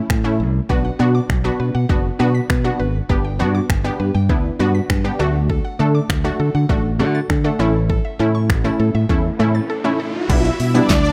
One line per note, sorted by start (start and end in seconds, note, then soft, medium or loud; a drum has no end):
0.10 0.41 A2 loud
0.10 finger snap loud
0.10 kick loud
0.24 0.51 A3 medium
0.24 0.51 C#4 medium
0.24 0.51 E4 medium
0.40 0.59 C2 medium
0.69 0.89 B1 medium
0.69 0.87 B3 medium
0.69 0.87 D4 medium
0.69 0.87 F#4 loud
0.69 0.83 B4 medium
0.69 kick loud
0.85 0.98 F#5 medium
0.99 1.19 B2 loud
0.99 1.26 B3 medium
0.99 1.26 D4 medium
0.99 1.26 F#4 loud
1.15 1.28 D6 medium
1.30 1.49 B1 loud
1.30 finger snap loud
1.30 kick loud
1.44 1.71 B3 medium
1.44 1.71 D4 medium
1.44 1.71 F#4 loud
1.44 1.58 B6 medium
1.60 1.69 B2 medium
1.60 1.73 B4 medium
1.75 1.84 B2 medium
1.75 1.88 F#5 medium
1.89 2.09 F#1 medium
1.89 2.07 B3 medium
1.89 2.07 D4 medium
1.89 2.07 F#4 loud
1.89 2.03 B4 medium
1.89 kick loud
2.19 2.39 B2 loud
2.19 2.46 B3 medium
2.19 2.46 D4 medium
2.19 2.46 F#4 loud
2.19 2.33 B4 medium
2.35 2.48 B6 medium
2.50 2.69 B2 loud
2.50 2.63 B4 medium
2.50 finger snap loud
2.50 kick loud
2.64 2.91 B3 medium
2.64 2.91 D4 medium
2.64 2.91 F#4 medium
2.64 2.78 F#5 medium
2.80 2.99 G#1 medium
2.80 2.93 B4 medium
3.09 3.41 G1 loud
3.09 3.27 B3 medium
3.09 3.27 D4 medium
3.09 3.27 G4 loud
3.09 3.23 B4 medium
3.09 kick loud
3.25 3.38 G5 medium
3.39 3.59 G2 medium
3.39 3.66 B3 medium
3.39 3.66 D4 medium
3.39 3.66 F#4 loud
3.55 3.68 D6 medium
3.70 3.89 G1 loud
3.70 finger snap loud
3.70 kick loud
3.84 4.11 B3 medium
3.84 4.11 D4 medium
3.84 4.11 G4 loud
3.84 3.98 B6 medium
4.00 4.09 G2 medium
4.00 4.13 B4 medium
4.15 4.29 G2 medium
4.15 4.28 G5 medium
4.29 4.49 D2 medium
4.29 4.47 B3 medium
4.29 4.47 D4 medium
4.29 4.47 E4 loud
4.29 4.43 B4 medium
4.29 kick loud
4.59 4.79 G2 medium
4.59 4.86 B3 medium
4.59 4.86 D4 medium
4.59 4.86 F#4 loud
4.59 4.73 B4 medium
4.75 4.88 B6 medium
4.90 5.09 G2 loud
4.90 5.03 B4 medium
4.90 finger snap loud
4.90 kick loud
5.04 5.19 B3 medium
5.04 5.18 D4 medium
5.04 5.20 G4 loud
5.04 5.18 G5 medium
5.19 5.59 D2 loud
5.19 5.67 A3 medium
5.19 5.68 D4 medium
5.19 5.68 F#4 loud
5.19 5.33 A4 medium
5.50 5.63 A4 medium
5.50 kick loud
5.65 5.78 F#5 medium
5.79 5.99 D3 loud
5.79 6.06 A3 medium
5.79 6.06 D4 medium
5.79 6.06 A4 loud
5.95 6.08 D6 medium
6.10 6.29 D2 loud
6.10 finger snap loud
6.10 kick loud
6.24 6.51 A3 medium
6.24 6.51 D4 medium
6.24 6.51 F#4 loud
6.24 6.38 A6 medium
6.40 6.49 D3 loud
6.40 6.53 A4 medium
6.55 6.64 D3 medium
6.55 6.68 F#5 medium
6.69 7.01 A1 medium
6.69 6.87 A3 medium
6.69 6.87 D4 medium
6.69 6.87 F#4 loud
6.69 6.83 A4 medium
6.69 kick loud
6.99 7.19 D3 medium
6.99 7.26 A3 medium
6.99 7.26 D4 medium
6.99 7.26 F#4 medium
6.99 7.13 A4 medium
7.15 7.28 A6 medium
7.30 7.49 D3 loud
7.30 7.43 A4 medium
7.30 finger snap loud
7.30 kick loud
7.44 7.58 A3 medium
7.44 7.60 D4 medium
7.44 7.60 A4 loud
7.44 7.58 F#5 medium
7.59 7.99 A1 loud
7.59 8.07 A3 loud
7.59 8.08 C#4 medium
7.59 8.08 E4 loud
7.59 7.73 A4 medium
7.90 8.03 A4 medium
7.90 kick loud
7.90 riser medium
8.05 8.18 E5 medium
8.19 8.51 A2 medium
8.19 8.46 A3 medium
8.19 8.46 C#4 medium
8.19 8.46 E4 loud
8.35 8.48 C#6 medium
8.50 8.69 A1 medium
8.50 finger snap loud
8.50 kick loud
8.64 8.91 A3 medium
8.64 8.91 C#4 medium
8.64 8.91 E4 loud
8.64 8.78 A6 medium
8.80 8.89 A2 loud
8.80 8.93 A4 medium
8.95 9.04 A2 loud
8.95 9.08 E5 medium
9.09 9.29 E2 medium
9.09 9.27 A3 medium
9.09 9.27 C#4 medium
9.09 9.27 E4 loud
9.09 9.23 A4 medium
9.09 kick loud
9.39 9.59 A2 loud
9.39 9.66 A3 medium
9.39 9.66 C#4 medium
9.39 9.66 E4 loud
9.39 9.53 A4 medium
9.55 9.68 A6 medium
9.70 9.83 A4 medium
9.84 10.11 A3 medium
9.84 10.11 C#4 medium
9.84 10.11 E4 medium
9.84 9.98 E5 medium
10.00 10.13 A4 medium
10.29 10.49 B1 loud
10.29 10.55 G3 medium
10.29 10.56 B3 medium
10.29 10.56 D4 medium
10.29 10.56 E4 medium
10.29 10.42 E4 medium
10.29 10.42 E5 loud
10.29 kick loud
10.29 closed hi-hat medium
10.29 crash loud
10.29 shaker medium
10.44 shaker medium
10.60 10.79 B2 medium
10.60 open hi-hat medium
10.60 shaker medium
10.74 11.01 G3 medium
10.74 11.01 B3 medium
10.74 11.01 D4 medium
10.74 10.87 D4 medium
10.74 11.01 E4 medium
10.74 10.87 D5 medium
10.74 shaker medium
10.89 11.09 D2 loud
10.89 11.12 D4 medium
10.89 11.12 D5 medium
10.89 kick loud
10.89 snare loud
10.89 clap loud
10.89 closed hi-hat medium
10.89 shaker medium
11.05 shaker medium